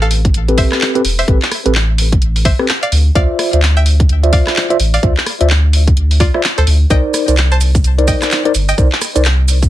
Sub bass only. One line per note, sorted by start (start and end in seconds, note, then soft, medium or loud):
0.00 0.30 A1 medium
0.34 0.65 A1 loud
1.05 1.23 E1 loud
1.28 1.38 A1 loud
1.66 2.18 A1 medium
2.22 2.53 A1 loud
2.92 3.10 D2 loud
3.15 3.26 D2 loud
3.53 4.05 D2 medium
4.09 4.40 D2 loud
4.80 4.98 A1 loud
5.03 5.13 D2 loud
5.41 5.93 D2 medium
5.97 6.28 D2 loud
6.58 6.64 D2 medium
6.67 6.85 D2 loud
6.90 7.01 C2 loud
7.28 7.80 C2 medium
7.84 8.15 C2 loud
8.55 8.73 G1 loud
8.78 8.88 C2 loud
9.16 9.68 C2 medium